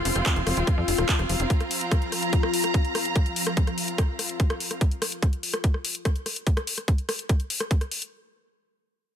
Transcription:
0.00 4.82 F3 medium
0.00 4.81 C4 medium
0.00 4.81 F4 medium
0.00 4.82 F4 medium
0.00 4.81 F5 medium
0.00 1.11 C6 medium
0.05 0.12 F1 loud
0.05 open hi-hat loud
0.16 0.22 F1 medium
0.16 cross-stick soft
0.16 closed hi-hat medium
0.26 kick loud
0.26 clap loud
0.26 closed hi-hat medium
0.36 0.43 F1 medium
0.36 closed hi-hat soft
0.47 0.53 F1 loud
0.47 cross-stick medium
0.47 open hi-hat medium
0.57 0.63 D#1 medium
0.57 closed hi-hat soft
0.67 kick loud
0.67 cross-stick soft
0.67 closed hi-hat medium
0.78 0.84 F2 medium
0.88 0.94 F1 loud
0.88 open hi-hat loud
0.98 1.05 D#1 medium
0.98 4.81 A#5 medium
0.98 cross-stick medium
0.98 closed hi-hat soft
1.09 kick loud
1.09 clap loud
1.09 closed hi-hat medium
1.19 1.26 F1 medium
1.19 cross-stick soft
1.19 closed hi-hat soft
1.29 1.36 F1 loud
1.29 open hi-hat loud
1.40 1.46 F1 medium
1.40 closed hi-hat medium
1.50 kick loud
1.50 closed hi-hat medium
1.60 cross-stick soft
1.60 closed hi-hat soft
1.71 open hi-hat loud
1.81 closed hi-hat medium
1.91 kick loud
1.91 cross-stick medium
1.91 closed hi-hat medium
2.02 closed hi-hat soft
2.12 cross-stick soft
2.12 open hi-hat medium
2.23 closed hi-hat soft
2.33 kick loud
2.33 closed hi-hat medium
2.43 cross-stick medium
2.54 open hi-hat loud
2.64 cross-stick soft
2.64 closed hi-hat medium
2.74 kick loud
2.74 closed hi-hat medium
2.85 closed hi-hat soft
2.95 cross-stick medium
2.95 open hi-hat medium
3.05 closed hi-hat medium
3.16 kick loud
3.16 cross-stick soft
3.16 closed hi-hat medium
3.26 closed hi-hat soft
3.36 open hi-hat loud
3.47 cross-stick medium
3.47 closed hi-hat medium
3.57 kick loud
3.57 closed hi-hat medium
3.67 cross-stick soft
3.67 closed hi-hat soft
3.78 open hi-hat medium
3.88 closed hi-hat soft
3.98 kick loud
3.98 cross-stick medium
3.98 closed hi-hat medium
4.19 cross-stick soft
4.19 open hi-hat loud
4.29 closed hi-hat soft
4.40 kick loud
4.40 closed hi-hat medium
4.50 cross-stick medium
4.50 closed hi-hat soft
4.60 open hi-hat medium
4.71 cross-stick soft
4.71 closed hi-hat medium
4.81 kick loud
4.81 closed hi-hat medium
4.91 closed hi-hat soft
5.02 cross-stick medium
5.02 open hi-hat loud
5.12 closed hi-hat medium
5.22 kick loud
5.22 cross-stick soft
5.22 closed hi-hat medium
5.33 closed hi-hat soft
5.43 open hi-hat medium
5.54 cross-stick medium
5.54 closed hi-hat medium
5.64 kick loud
5.64 closed hi-hat medium
5.74 cross-stick soft
5.85 open hi-hat loud
5.95 closed hi-hat medium
6.05 kick loud
6.05 cross-stick medium
6.05 closed hi-hat medium
6.16 closed hi-hat soft
6.26 cross-stick soft
6.26 open hi-hat medium
6.36 closed hi-hat medium
6.47 kick loud
6.47 closed hi-hat medium
6.57 cross-stick medium
6.57 closed hi-hat soft
6.67 open hi-hat loud
6.78 cross-stick soft
6.78 closed hi-hat medium
6.88 kick loud
6.88 closed hi-hat medium
6.98 closed hi-hat soft
7.09 cross-stick medium
7.09 open hi-hat medium
7.19 closed hi-hat medium
7.29 kick loud
7.29 cross-stick soft
7.29 closed hi-hat medium
7.40 closed hi-hat soft
7.50 open hi-hat loud
7.60 cross-stick medium
7.60 closed hi-hat medium
7.71 kick loud
7.71 closed hi-hat medium
7.81 cross-stick soft
7.81 closed hi-hat soft
7.91 open hi-hat medium
8.02 closed hi-hat medium

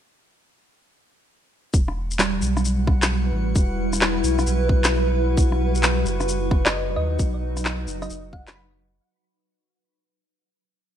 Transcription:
1.74 2.41 E1 medium
1.74 5.34 G3 medium
1.74 5.34 E4 medium
1.74 9.02 F#4 medium
1.74 8.97 B4 medium
1.74 9.02 F#5 medium
1.74 kick loud
1.74 shaker medium
1.88 cross-stick soft
2.11 shaker medium
2.19 3.93 G3 medium
2.19 clap loud
2.19 shaker medium
2.42 3.32 B1 medium
2.42 shaker medium
2.57 cross-stick medium
2.57 shaker soft
2.65 shaker medium
2.87 kick medium
2.87 cross-stick soft
3.02 clap loud
3.02 shaker medium
3.33 3.54 A1 medium
3.56 4.23 E1 medium
3.56 kick loud
3.56 shaker medium
3.93 cross-stick soft
3.93 shaker medium
4.01 clap loud
4.01 shaker medium
4.24 4.45 B1 medium
4.24 shaker medium
4.39 cross-stick soft
4.39 shaker soft
4.46 5.36 B1 loud
4.46 shaker medium
4.69 kick loud
4.84 clap loud
4.84 shaker medium
5.37 6.05 B1 medium
5.37 8.98 F#3 medium
5.37 8.98 D#4 medium
5.37 kick loud
5.37 shaker medium
5.52 cross-stick soft
5.75 shaker medium
5.83 clap loud
5.83 shaker medium
6.06 6.96 F#1 medium
6.06 shaker medium
6.20 cross-stick soft
6.20 shaker soft
6.28 shaker medium
6.51 kick loud
6.51 cross-stick soft
6.65 6.89 D#5 medium
6.65 clap loud
6.65 shaker medium
6.96 7.18 D#2 medium
6.96 7.21 D#5 medium
7.19 7.87 B1 loud
7.19 kick loud
7.19 shaker medium
7.57 cross-stick soft
7.57 shaker medium
7.65 clap loud
7.65 shaker medium
7.87 8.09 F#1 medium
7.87 shaker medium
8.02 8.26 D#5 medium
8.02 cross-stick soft
8.02 shaker soft
8.10 9.00 F#1 loud
8.10 shaker medium
8.33 8.45 F#5 medium
8.33 kick loud
8.47 8.53 B5 medium
8.47 clap loud
8.47 shaker medium
8.56 8.65 B5 medium

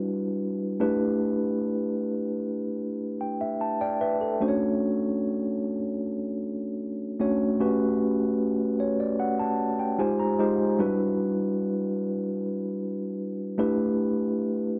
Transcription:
0.00 0.80 D4 medium
0.00 0.81 E4 medium
0.00 0.83 F#4 medium
0.00 0.81 B4 medium
0.80 2.16 A3 medium
0.80 2.17 D4 medium
0.80 2.17 E4 medium
0.80 2.17 G4 medium
0.80 2.17 B4 medium
3.21 3.40 G5 soft
3.41 3.79 E5 medium
3.61 3.80 A5 soft
3.81 4.00 D5 medium
3.81 4.00 G5 medium
4.01 4.20 B4 medium
4.01 4.38 E5 medium
4.21 4.59 A4 soft
4.40 5.77 A3 medium
4.40 5.77 C#4 medium
4.40 5.77 D4 medium
4.40 5.77 F#4 medium
4.40 4.48 C5 medium
4.48 5.80 C#5 medium
7.20 7.54 A3 medium
7.20 7.54 C#4 medium
7.20 7.54 D4 medium
7.20 7.54 F#4 medium
7.20 7.55 C#5 medium
7.60 8.96 A3 medium
7.60 8.96 C#4 medium
7.60 8.96 F#4 medium
7.60 8.96 G4 medium
7.60 8.97 B4 medium
8.80 8.99 C#5 medium
9.00 9.19 D5 medium
9.20 9.38 F#5 medium
9.39 9.77 A5 medium
9.80 9.98 G5 medium
9.99 10.33 G#3 medium
9.99 10.33 D#4 medium
9.99 10.33 F4 medium
9.99 10.34 G4 medium
9.99 10.34 C5 medium
9.99 10.18 G#5 medium
10.20 10.75 A#5 medium
10.39 10.73 G#3 medium
10.39 10.73 D#4 medium
10.39 10.73 F4 medium
10.39 10.74 G4 medium
10.39 10.74 C5 medium
10.79 12.15 G3 medium
10.79 12.15 D4 medium
10.79 12.15 E4 medium
10.79 12.15 F#4 medium
10.79 12.16 B4 medium
13.58 14.79 A3 medium
13.58 14.79 D4 medium
13.58 14.79 E4 medium
13.58 14.79 G4 medium
13.58 14.79 B4 medium

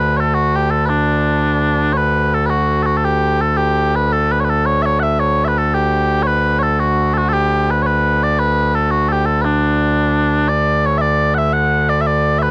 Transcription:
0.00 12.51 D2 medium
0.00 12.51 D3 medium
0.00 0.17 B4 medium
0.17 0.34 A4 medium
0.17 0.20 C#5 medium
0.34 0.56 F#4 medium
0.56 0.71 G4 medium
0.71 0.85 A4 medium
0.85 1.93 D4 medium
0.85 0.89 B4 medium
1.93 2.34 B4 loud
1.93 1.97 C#5 loud
2.34 2.46 A4 medium
2.46 2.50 B4 medium
2.50 2.83 F#4 medium
2.83 2.97 F#4 medium
2.83 2.86 A4 medium
2.97 3.05 A4 medium
3.05 3.41 G4 medium
3.41 3.57 A4 medium
3.57 3.96 G4 loud
3.96 4.12 B4 medium
4.12 4.32 A4 loud
4.32 4.40 B4 loud
4.40 4.44 C#5 medium
4.44 4.50 B4 medium
4.50 4.66 A4 medium
4.66 4.82 C#5 loud
4.82 5.00 C#5 loud
4.82 4.86 E5 loud
5.00 5.20 E5 loud
5.00 5.03 F#5 loud
5.20 5.45 C#5 loud
5.45 5.58 B4 medium
5.45 5.48 E5 medium
5.58 5.74 A4 medium
5.74 6.23 G4 medium
6.23 6.59 B4 loud
6.23 6.27 C#5 loud
6.59 6.80 A4 loud
6.59 6.63 C#5 loud
6.80 7.14 F#4 medium
7.14 7.29 F#4 medium
7.14 7.18 A4 medium
7.29 7.33 A4 loud
7.33 7.71 G4 loud
7.71 7.82 B4 medium
7.82 7.86 C#5 medium
7.86 8.23 B4 medium
8.23 8.39 D5 loud
8.39 8.75 B4 loud
8.75 8.91 A4 medium
8.91 9.09 F#4 medium
9.09 9.26 G4 medium
9.09 9.12 A4 medium
9.26 9.41 A4 medium
9.41 10.49 D4 medium
9.41 9.45 B4 medium
10.49 10.86 D5 loud
10.86 10.98 C#5 loud
10.98 11.34 D5 loud
10.98 11.01 E5 loud
11.34 11.53 E5 loud
11.34 11.38 F#5 loud
11.53 11.89 F#5 loud
11.89 12.01 D5 loud
12.01 12.07 E5 medium
12.07 12.39 D5 loud
12.39 12.51 B4 loud
12.39 12.42 E5 loud

